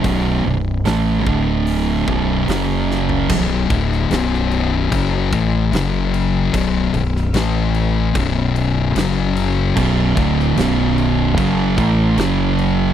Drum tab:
CC |----------------|x-x-x-x-x-x-x-x-|x-x-x-x-x-x-x-x-|x-x-x-x-x-x-x-x-|
HH |o---o---o---o---|----------------|----------------|----------------|
SD |----o-------o-o-|---ooo------o---|---oo-------o---|---oo-------o---|
FT |---------------o|----------------|----------------|----------------|
BD |o-----o---o-----|o-o-----o-o-----|o-------o-------|o-o-----o-o-----|